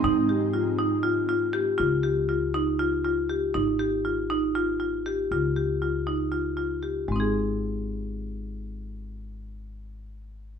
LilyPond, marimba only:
\new Staff \with { instrumentName = "Marimba" } { \time 7/8 \key aes \major \tempo 4 = 119 ees'8 g'8 f'8 ees'8 f'8 f'8 g'8 | f'8 g'8 f'8 ees'8 f'8 f'8 g'8 | ees'8 g'8 f'8 ees'8 f'8 f'8 g'8 | f'8 g'8 f'8 ees'8 f'8 f'8 g'8 |
<aes c' ees' aes'>2.~ <aes c' ees' aes'>8~ | <aes c' ees' aes'>2.~ <aes c' ees' aes'>8 | }